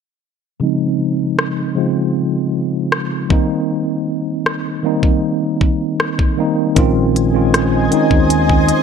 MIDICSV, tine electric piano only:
0, 0, Header, 1, 2, 480
1, 0, Start_track
1, 0, Tempo, 769231
1, 383, Time_signature, 4, 2, 24, 8
1, 5509, End_track
2, 0, Start_track
2, 0, Title_t, "Tine electric piano"
2, 0, Program_c, 0, 4
2, 373, Note_on_c, 0, 49, 91
2, 379, Note_on_c, 0, 53, 83
2, 385, Note_on_c, 0, 56, 85
2, 390, Note_on_c, 0, 60, 86
2, 394, Note_on_c, 0, 63, 99
2, 495, Control_c, 0, 64, 127
2, 885, Note_off_c, 0, 49, 0
2, 887, Note_off_c, 0, 53, 0
2, 890, Note_off_c, 0, 56, 0
2, 893, Note_off_c, 0, 60, 0
2, 895, Note_off_c, 0, 63, 0
2, 1092, Note_on_c, 0, 49, 82
2, 1097, Note_on_c, 0, 53, 73
2, 1102, Note_on_c, 0, 56, 75
2, 1107, Note_on_c, 0, 60, 70
2, 1113, Note_on_c, 0, 65, 87
2, 1773, Note_off_c, 0, 49, 0
2, 1775, Note_off_c, 0, 53, 0
2, 1778, Note_off_c, 0, 56, 0
2, 1780, Note_off_c, 0, 60, 0
2, 1783, Note_off_c, 0, 65, 0
2, 2053, Note_on_c, 0, 51, 86
2, 2059, Note_on_c, 0, 55, 71
2, 2063, Note_on_c, 0, 58, 70
2, 2068, Note_on_c, 0, 60, 74
2, 2071, Control_c, 0, 64, 0
2, 2073, Note_on_c, 0, 63, 94
2, 2163, Control_c, 0, 64, 127
2, 2826, Note_off_c, 0, 51, 0
2, 2829, Note_off_c, 0, 55, 0
2, 2831, Note_off_c, 0, 58, 0
2, 2833, Note_off_c, 0, 60, 0
2, 2836, Note_off_c, 0, 63, 0
2, 3013, Note_on_c, 0, 51, 80
2, 3019, Note_on_c, 0, 55, 73
2, 3024, Note_on_c, 0, 58, 75
2, 3028, Note_on_c, 0, 60, 73
2, 3034, Note_on_c, 0, 63, 89
2, 3693, Note_off_c, 0, 51, 0
2, 3696, Note_off_c, 0, 55, 0
2, 3699, Note_off_c, 0, 58, 0
2, 3701, Note_off_c, 0, 60, 0
2, 3704, Note_off_c, 0, 63, 0
2, 3974, Note_on_c, 0, 51, 78
2, 3978, Note_on_c, 0, 55, 69
2, 3983, Note_on_c, 0, 58, 71
2, 3989, Note_on_c, 0, 60, 72
2, 3994, Note_on_c, 0, 63, 88
2, 4147, Note_off_c, 0, 51, 0
2, 4149, Note_off_c, 0, 55, 0
2, 4152, Note_off_c, 0, 58, 0
2, 4155, Note_off_c, 0, 60, 0
2, 4157, Note_off_c, 0, 63, 0
2, 4213, Note_on_c, 0, 51, 105
2, 4218, Note_on_c, 0, 56, 93
2, 4224, Note_on_c, 0, 60, 97
2, 4228, Note_on_c, 0, 61, 89
2, 4230, Control_c, 0, 64, 0
2, 4233, Note_on_c, 0, 65, 109
2, 4360, Control_c, 0, 64, 127
2, 4471, Note_off_c, 0, 51, 0
2, 4474, Note_off_c, 0, 56, 0
2, 4477, Note_off_c, 0, 60, 0
2, 4479, Note_off_c, 0, 61, 0
2, 4481, Note_off_c, 0, 65, 0
2, 4574, Note_on_c, 0, 51, 76
2, 4579, Note_on_c, 0, 56, 71
2, 4584, Note_on_c, 0, 60, 72
2, 4588, Note_on_c, 0, 61, 74
2, 4594, Note_on_c, 0, 65, 86
2, 4832, Note_off_c, 0, 51, 0
2, 4834, Note_off_c, 0, 56, 0
2, 4836, Note_off_c, 0, 60, 0
2, 4839, Note_off_c, 0, 61, 0
2, 4842, Note_off_c, 0, 65, 0
2, 4934, Note_on_c, 0, 51, 81
2, 4940, Note_on_c, 0, 56, 80
2, 4945, Note_on_c, 0, 60, 78
2, 4950, Note_on_c, 0, 61, 77
2, 4954, Note_on_c, 0, 63, 96
2, 5276, Note_off_c, 0, 51, 0
2, 5279, Note_off_c, 0, 56, 0
2, 5282, Note_off_c, 0, 60, 0
2, 5284, Note_off_c, 0, 61, 0
2, 5286, Note_off_c, 0, 63, 0
2, 5509, End_track
0, 0, End_of_file